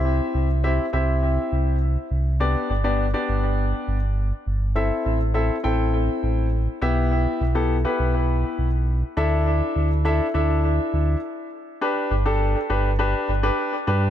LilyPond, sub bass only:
\new Staff \with { instrumentName = "Sub bass" } { \clef bass \time 4/4 \key g \major \tempo 4 = 102 c,8 c,4 c,4 c,4 c,8~ | c,8 g,,4 g,,4 g,,4 g,,8~ | g,,8 a,,4 a,,4 a,,4 b,,8~ | b,,8 b,,4 b,,4 b,,4 d,8~ |
d,8 d,4 d,4 d,8 r4 | r8 g,,4 g,,4 g,,8 r8 g,8 | }